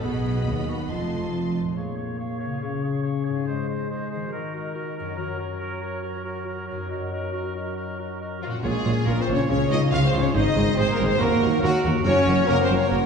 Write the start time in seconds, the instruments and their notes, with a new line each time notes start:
Already playing: harp F#3 D#4 F#4
0.03 double bass section B1, cello section B2, harp B2, viola section B3, clarinet G#4, violin section D#5 F#5 B5
0.26 harp F#3
0.45 cello section D#2, double bass section D#2, harp F#4
0.68 harp D#4, clarinet F#4
0.90 double bass section F1, cello section F2, harp F2, viola section A3, clarinet F4, violin section D#5 A5 C6
1.13 harp C3
1.35 harp A4
1.56 harp D#4
1.60 harp A#2
1.64 harp F4
1.69 harp G#4
1.73 french horn section A#3, clarinet G#4, harp C#5, oboe C#5, flute section F5
1.97 clarinet G#4, oboe C#5, flute section F5
2.18 clarinet G#4, oboe C#5, flute section F5
2.40 clarinet G#4, oboe C#5, flute section F5
2.45 harp C#3
2.49 harp F4
2.54 harp G#4
2.58 clarinet G#4, harp C#5, oboe C#5, flute section F5
2.64 french horn section C#4
2.83 clarinet G#4, oboe C#5, flute section F5
3.03 clarinet G#4, oboe C#5, flute section F5
3.25 clarinet G#4, oboe C#5, flute section F5
3.29 harp G#2
3.34 harp D#4
3.38 harp G#4
3.43 harp C5, oboe C5
3.47 french horn section G#3, clarinet G#4, flute section D#5
3.68 clarinet G#4, oboe C5, flute section D#5
3.90 clarinet G#4, oboe C5, flute section D#5
4.10 clarinet G#4, oboe C5, flute section D#5
4.15 harp D#3
4.20 harp D#4
4.24 harp F#4
4.29 french horn section D#3, harp A#4, oboe A#4, flute section D#5
4.34 clarinet F#4
4.53 clarinet F#4, oboe A#4, flute section D#5
4.74 clarinet F#4, oboe A#4, flute section D#5
4.97 harp F#2, clarinet F#4, oboe A#4, flute section D#5
5.04 harp C#4
5.09 harp F#4
5.14 harp A#4, oboe A#4, flute section C#5
5.18 french horn section F#3, clarinet F#4
5.39 clarinet F#4, oboe A#4, flute section C#5
5.60 clarinet F#4, oboe A#4, flute section C#5
5.81 clarinet F#4, oboe A#4, flute section C#5
6.02 clarinet F#4, oboe A#4, flute section C#5
6.23 clarinet F#4, oboe A#4, flute section C#5
6.45 clarinet F#4, oboe A#4, flute section C#5
6.66 clarinet F#4, oboe A#4, flute section C#5
6.71 harp F#2
6.76 harp D#4
6.80 harp F#4
6.85 clarinet F#4, harp A#4
6.89 oboe A#4, flute section D#5
7.11 clarinet F#4, oboe A#4, flute section D#5
7.33 clarinet F#4, oboe A#4, flute section D#5
7.55 clarinet F#4, oboe A#4, flute section D#5
7.76 clarinet F#4, oboe A#4, flute section D#5
7.99 clarinet F#4, oboe A#4, flute section D#5
8.20 clarinet F#4, oboe A#4, flute section D#5
8.42 french horn section F3, violin section F4, trumpet F4, clarinet F#4, oboe A#4, flute section D#5
8.46 harp A#2, french horn section F#3, violin section F#4, trumpet F#4
8.51 harp C#4, violin section F#4
8.56 harp F4
8.60 cello section A#2, french horn section G#3, clarinet F4, violin section G#4, harp A#4, oboe C#5, flute section F5
8.64 double bass section A#1, tuba A#1, viola section F4 C#5, trumpet G#4, violin section G#4
8.84 double bass section A#1, tuba A#1, cello section A#2, viola section F4 C#5
9.05 tuba A#1, double bass section A#1, cello section A#2, french horn section A#3, clarinet F4, viola section F4 C#5, violin section A#4, trumpet A#4, oboe C#5, flute section F5
9.20 french horn section C4, violin section C5, trumpet C5
9.28 tuba A#1, double bass section A#1, cello section A#2, harp C#3, viola section F4 C#5
9.33 french horn section C#4, harp C#4, violin section C#5
9.37 harp F4, trumpet C#5
9.45 cello section C#3, french horn section C#4, harp G#4, oboe C#5
9.49 tuba C#2, double bass section C#2, viola section F4 C#5, clarinet G#4, violin section C#5, trumpet C#5, flute section F5
9.68 tuba C#2, double bass section C#2, french horn section D#4, viola section F4 C#5, violin section D#5
9.72 cello section C#3, trumpet D#5
9.90 double bass section C#2, tuba C#2, cello section C#3, french horn section F4, viola section F4 C#5, clarinet G#4, oboe C#5, flute section F5, violin section F5, trumpet F5
10.06 french horn section C4, violin section C5, trumpet C5
10.13 tuba C#2, double bass section C#2, cello section C#3, viola section F4 C#5
10.17 harp G#2, french horn section C#4
10.22 harp C4, violin section C#5, trumpet C#5
10.26 harp D#4
10.30 french horn section D#4, harp G#4, clarinet G#4, oboe C5, violin section D#5, flute section D#5
10.35 tuba G#1, double bass section G#1, cello section G#2, viola section G#4 C5, trumpet D#5, violin section D#5
10.56 tuba G#1, double bass section G#1, cello section G#2, viola section G#4 C5
10.74 tuba G#1, double bass section G#1, cello section G#2, french horn section C4, clarinet G#4, violin section C5, oboe C5, trumpet C5, flute section D#5
10.79 viola section G#4 C5, violin section C5
10.89 french horn section A#3, violin section A#4, trumpet A#4
10.95 tuba G#1, violin section A#4, viola section C5
11.00 double bass section G#1, cello section G#2, harp D#3, french horn section C4, viola section G#4
11.05 harp A#3, violin section C5, trumpet C5
11.12 harp F#4
11.16 french horn section A#3, clarinet F#4, harp A#4, violin section A#4, oboe A#4
11.20 tuba D#2, cello section D#2, double bass section D#2, viola section F#4 A#4, trumpet A#4, violin section A#4, flute section F#5
11.41 tuba D#2, double bass section D#2, cello section D#2, viola section F#4 A#4
11.59 tuba D#2, french horn section F#3, clarinet F#4, oboe A#4
11.63 cello section D#2, double bass section D#2, viola section F#4 A#4, trumpet F#4, violin section F#4, flute section F#5
11.83 tuba D#2, double bass section D#2, cello section D#2, harp F#2, viola section F#4 A#4
11.92 harp A#3
11.97 harp F#4
12.01 french horn section C#4, harp A#4, oboe A#4
12.05 tuba F#1, double bass section F#1, cello section F#2, clarinet F#4, viola section F#4 A#4, violin section C#5, trumpet C#5, flute section F#5
12.27 tuba F#1, double bass section F#1, cello section F#2, viola section F#4 A#4
12.46 tuba F#1, double bass section F#1, cello section F#2, french horn section A#3, clarinet F#4, viola section F#4 A#4, oboe A#4, violin section A#4, trumpet A#4, flute section F#5
12.60 french horn section C4, violin section C5, trumpet C5
12.69 tuba F#1, double bass section F#1, cello section F#2, viola section F#4 A#4
12.74 french horn section C#4, violin section C#5, trumpet C#5
12.88 tuba F#1, double bass section F#1, cello section F#2, french horn section A#3, clarinet F#4, viola section F#4 A#4, oboe A#4, violin section A#4, trumpet A#4, flute section F#5
12.93 violin section A#4